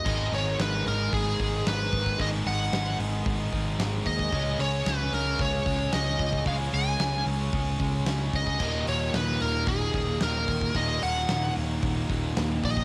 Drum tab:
CC |x---------------|----------------|----------------|----------------|
HH |--o-o-o-o-o-o-o-|o-o-o-o-o-o-o-o-|o-o-o-o-o-o-o-o-|o-o-o-o-o-o-o-o-|
SD |----o-------o---|----o-------o---|----o-------o---|----o-------o---|
BD |o-------o-o---oo|o-------o-o---oo|o-------o-o---oo|o-------o-o---oo|

CC |x---------------|----------------|
HH |--o-o-o-o-o-o-o-|o-o-o-o-o-o-o-o-|
SD |----o-------o---|----o-------o---|
BD |o-------o-o---oo|o-------o-o---oo|